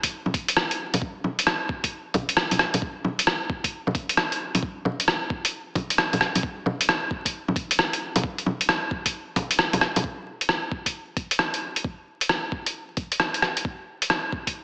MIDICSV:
0, 0, Header, 1, 2, 480
1, 0, Start_track
1, 0, Tempo, 451128
1, 1083, Time_signature, 4, 2, 24, 8
1, 15576, End_track
2, 0, Start_track
2, 0, Title_t, "Drums"
2, 37, Note_on_c, 9, 42, 54
2, 38, Note_on_c, 9, 36, 59
2, 143, Note_off_c, 9, 42, 0
2, 144, Note_off_c, 9, 36, 0
2, 276, Note_on_c, 9, 61, 46
2, 362, Note_on_c, 9, 36, 106
2, 364, Note_on_c, 9, 42, 32
2, 383, Note_off_c, 9, 61, 0
2, 469, Note_off_c, 9, 36, 0
2, 471, Note_off_c, 9, 42, 0
2, 515, Note_on_c, 9, 42, 58
2, 602, Note_on_c, 9, 37, 109
2, 622, Note_off_c, 9, 42, 0
2, 708, Note_off_c, 9, 37, 0
2, 756, Note_on_c, 9, 42, 45
2, 862, Note_off_c, 9, 42, 0
2, 997, Note_on_c, 9, 42, 56
2, 997, Note_on_c, 9, 61, 58
2, 1081, Note_on_c, 9, 36, 114
2, 1103, Note_off_c, 9, 42, 0
2, 1103, Note_off_c, 9, 61, 0
2, 1187, Note_off_c, 9, 36, 0
2, 1321, Note_on_c, 9, 61, 48
2, 1428, Note_off_c, 9, 61, 0
2, 1477, Note_on_c, 9, 42, 51
2, 1561, Note_on_c, 9, 37, 104
2, 1583, Note_off_c, 9, 42, 0
2, 1667, Note_off_c, 9, 37, 0
2, 1801, Note_on_c, 9, 36, 102
2, 1907, Note_off_c, 9, 36, 0
2, 1956, Note_on_c, 9, 36, 58
2, 1957, Note_on_c, 9, 42, 52
2, 2062, Note_off_c, 9, 36, 0
2, 2063, Note_off_c, 9, 42, 0
2, 2278, Note_on_c, 9, 42, 30
2, 2278, Note_on_c, 9, 61, 57
2, 2281, Note_on_c, 9, 36, 109
2, 2385, Note_off_c, 9, 42, 0
2, 2385, Note_off_c, 9, 61, 0
2, 2387, Note_off_c, 9, 36, 0
2, 2435, Note_on_c, 9, 42, 53
2, 2518, Note_on_c, 9, 37, 109
2, 2541, Note_off_c, 9, 42, 0
2, 2625, Note_off_c, 9, 37, 0
2, 2674, Note_on_c, 9, 42, 43
2, 2674, Note_on_c, 9, 61, 57
2, 2759, Note_on_c, 9, 37, 62
2, 2780, Note_off_c, 9, 42, 0
2, 2780, Note_off_c, 9, 61, 0
2, 2865, Note_off_c, 9, 37, 0
2, 2914, Note_on_c, 9, 42, 52
2, 2914, Note_on_c, 9, 61, 57
2, 3000, Note_on_c, 9, 36, 112
2, 3020, Note_off_c, 9, 42, 0
2, 3020, Note_off_c, 9, 61, 0
2, 3106, Note_off_c, 9, 36, 0
2, 3240, Note_on_c, 9, 61, 50
2, 3346, Note_off_c, 9, 61, 0
2, 3394, Note_on_c, 9, 42, 50
2, 3479, Note_on_c, 9, 37, 95
2, 3501, Note_off_c, 9, 42, 0
2, 3586, Note_off_c, 9, 37, 0
2, 3720, Note_on_c, 9, 36, 105
2, 3827, Note_off_c, 9, 36, 0
2, 3875, Note_on_c, 9, 36, 59
2, 3877, Note_on_c, 9, 42, 52
2, 3981, Note_off_c, 9, 36, 0
2, 3984, Note_off_c, 9, 42, 0
2, 4118, Note_on_c, 9, 61, 48
2, 4201, Note_on_c, 9, 36, 109
2, 4203, Note_on_c, 9, 42, 30
2, 4225, Note_off_c, 9, 61, 0
2, 4307, Note_off_c, 9, 36, 0
2, 4310, Note_off_c, 9, 42, 0
2, 4356, Note_on_c, 9, 42, 52
2, 4441, Note_on_c, 9, 37, 97
2, 4462, Note_off_c, 9, 42, 0
2, 4547, Note_off_c, 9, 37, 0
2, 4597, Note_on_c, 9, 42, 42
2, 4704, Note_off_c, 9, 42, 0
2, 4838, Note_on_c, 9, 42, 51
2, 4838, Note_on_c, 9, 61, 61
2, 4921, Note_on_c, 9, 36, 103
2, 4944, Note_off_c, 9, 42, 0
2, 4944, Note_off_c, 9, 61, 0
2, 5028, Note_off_c, 9, 36, 0
2, 5162, Note_on_c, 9, 61, 51
2, 5268, Note_off_c, 9, 61, 0
2, 5318, Note_on_c, 9, 42, 46
2, 5403, Note_on_c, 9, 37, 95
2, 5424, Note_off_c, 9, 42, 0
2, 5509, Note_off_c, 9, 37, 0
2, 5642, Note_on_c, 9, 36, 102
2, 5748, Note_off_c, 9, 36, 0
2, 5797, Note_on_c, 9, 42, 48
2, 5903, Note_off_c, 9, 42, 0
2, 6122, Note_on_c, 9, 36, 110
2, 6125, Note_on_c, 9, 42, 28
2, 6125, Note_on_c, 9, 61, 59
2, 6229, Note_off_c, 9, 36, 0
2, 6232, Note_off_c, 9, 42, 0
2, 6232, Note_off_c, 9, 61, 0
2, 6281, Note_on_c, 9, 42, 52
2, 6365, Note_on_c, 9, 37, 96
2, 6387, Note_off_c, 9, 42, 0
2, 6472, Note_off_c, 9, 37, 0
2, 6523, Note_on_c, 9, 42, 42
2, 6523, Note_on_c, 9, 61, 61
2, 6605, Note_on_c, 9, 37, 57
2, 6630, Note_off_c, 9, 42, 0
2, 6630, Note_off_c, 9, 61, 0
2, 6711, Note_off_c, 9, 37, 0
2, 6761, Note_on_c, 9, 42, 52
2, 6761, Note_on_c, 9, 61, 61
2, 6844, Note_on_c, 9, 36, 105
2, 6867, Note_off_c, 9, 42, 0
2, 6867, Note_off_c, 9, 61, 0
2, 6950, Note_off_c, 9, 36, 0
2, 7085, Note_on_c, 9, 61, 56
2, 7192, Note_off_c, 9, 61, 0
2, 7242, Note_on_c, 9, 42, 51
2, 7329, Note_on_c, 9, 37, 96
2, 7349, Note_off_c, 9, 42, 0
2, 7435, Note_off_c, 9, 37, 0
2, 7563, Note_on_c, 9, 36, 100
2, 7670, Note_off_c, 9, 36, 0
2, 7719, Note_on_c, 9, 36, 58
2, 7723, Note_on_c, 9, 42, 50
2, 7825, Note_off_c, 9, 36, 0
2, 7830, Note_off_c, 9, 42, 0
2, 7963, Note_on_c, 9, 61, 52
2, 8043, Note_on_c, 9, 36, 106
2, 8047, Note_on_c, 9, 42, 29
2, 8069, Note_off_c, 9, 61, 0
2, 8149, Note_off_c, 9, 36, 0
2, 8154, Note_off_c, 9, 42, 0
2, 8202, Note_on_c, 9, 42, 55
2, 8287, Note_on_c, 9, 37, 97
2, 8308, Note_off_c, 9, 42, 0
2, 8393, Note_off_c, 9, 37, 0
2, 8441, Note_on_c, 9, 42, 43
2, 8547, Note_off_c, 9, 42, 0
2, 8678, Note_on_c, 9, 42, 53
2, 8678, Note_on_c, 9, 61, 64
2, 8762, Note_on_c, 9, 36, 108
2, 8784, Note_off_c, 9, 42, 0
2, 8784, Note_off_c, 9, 61, 0
2, 8868, Note_off_c, 9, 36, 0
2, 8920, Note_on_c, 9, 42, 30
2, 9005, Note_on_c, 9, 61, 54
2, 9027, Note_off_c, 9, 42, 0
2, 9111, Note_off_c, 9, 61, 0
2, 9159, Note_on_c, 9, 42, 52
2, 9244, Note_on_c, 9, 37, 104
2, 9265, Note_off_c, 9, 42, 0
2, 9351, Note_off_c, 9, 37, 0
2, 9482, Note_on_c, 9, 36, 94
2, 9588, Note_off_c, 9, 36, 0
2, 9637, Note_on_c, 9, 36, 57
2, 9638, Note_on_c, 9, 42, 51
2, 9743, Note_off_c, 9, 36, 0
2, 9744, Note_off_c, 9, 42, 0
2, 9961, Note_on_c, 9, 36, 103
2, 9961, Note_on_c, 9, 42, 31
2, 9961, Note_on_c, 9, 61, 64
2, 10067, Note_off_c, 9, 36, 0
2, 10068, Note_off_c, 9, 42, 0
2, 10068, Note_off_c, 9, 61, 0
2, 10115, Note_on_c, 9, 42, 56
2, 10201, Note_on_c, 9, 37, 96
2, 10222, Note_off_c, 9, 42, 0
2, 10307, Note_off_c, 9, 37, 0
2, 10356, Note_on_c, 9, 36, 57
2, 10356, Note_on_c, 9, 42, 46
2, 10356, Note_on_c, 9, 61, 68
2, 10441, Note_on_c, 9, 37, 57
2, 10462, Note_off_c, 9, 42, 0
2, 10462, Note_off_c, 9, 61, 0
2, 10463, Note_off_c, 9, 36, 0
2, 10548, Note_off_c, 9, 37, 0
2, 10599, Note_on_c, 9, 42, 54
2, 10599, Note_on_c, 9, 61, 67
2, 10681, Note_on_c, 9, 36, 98
2, 10706, Note_off_c, 9, 42, 0
2, 10706, Note_off_c, 9, 61, 0
2, 10788, Note_off_c, 9, 36, 0
2, 11077, Note_on_c, 9, 42, 48
2, 11160, Note_on_c, 9, 37, 90
2, 11184, Note_off_c, 9, 42, 0
2, 11266, Note_off_c, 9, 37, 0
2, 11401, Note_on_c, 9, 36, 93
2, 11508, Note_off_c, 9, 36, 0
2, 11556, Note_on_c, 9, 36, 52
2, 11558, Note_on_c, 9, 42, 49
2, 11662, Note_off_c, 9, 36, 0
2, 11664, Note_off_c, 9, 42, 0
2, 11881, Note_on_c, 9, 36, 96
2, 11882, Note_on_c, 9, 42, 28
2, 11988, Note_off_c, 9, 36, 0
2, 11988, Note_off_c, 9, 42, 0
2, 12035, Note_on_c, 9, 42, 52
2, 12119, Note_on_c, 9, 37, 94
2, 12141, Note_off_c, 9, 42, 0
2, 12225, Note_off_c, 9, 37, 0
2, 12277, Note_on_c, 9, 42, 43
2, 12383, Note_off_c, 9, 42, 0
2, 12514, Note_on_c, 9, 42, 52
2, 12602, Note_on_c, 9, 36, 106
2, 12621, Note_off_c, 9, 42, 0
2, 12708, Note_off_c, 9, 36, 0
2, 12993, Note_on_c, 9, 42, 47
2, 13080, Note_on_c, 9, 37, 95
2, 13100, Note_off_c, 9, 42, 0
2, 13187, Note_off_c, 9, 37, 0
2, 13321, Note_on_c, 9, 36, 95
2, 13428, Note_off_c, 9, 36, 0
2, 13475, Note_on_c, 9, 42, 49
2, 13581, Note_off_c, 9, 42, 0
2, 13799, Note_on_c, 9, 42, 30
2, 13802, Note_on_c, 9, 36, 102
2, 13906, Note_off_c, 9, 42, 0
2, 13908, Note_off_c, 9, 36, 0
2, 13956, Note_on_c, 9, 42, 52
2, 14041, Note_on_c, 9, 37, 95
2, 14063, Note_off_c, 9, 42, 0
2, 14147, Note_off_c, 9, 37, 0
2, 14197, Note_on_c, 9, 42, 42
2, 14282, Note_on_c, 9, 37, 55
2, 14303, Note_off_c, 9, 42, 0
2, 14389, Note_off_c, 9, 37, 0
2, 14436, Note_on_c, 9, 42, 51
2, 14522, Note_on_c, 9, 36, 109
2, 14542, Note_off_c, 9, 42, 0
2, 14628, Note_off_c, 9, 36, 0
2, 14916, Note_on_c, 9, 42, 49
2, 15001, Note_on_c, 9, 37, 93
2, 15022, Note_off_c, 9, 42, 0
2, 15108, Note_off_c, 9, 37, 0
2, 15241, Note_on_c, 9, 36, 105
2, 15348, Note_off_c, 9, 36, 0
2, 15396, Note_on_c, 9, 36, 58
2, 15399, Note_on_c, 9, 42, 50
2, 15503, Note_off_c, 9, 36, 0
2, 15505, Note_off_c, 9, 42, 0
2, 15576, End_track
0, 0, End_of_file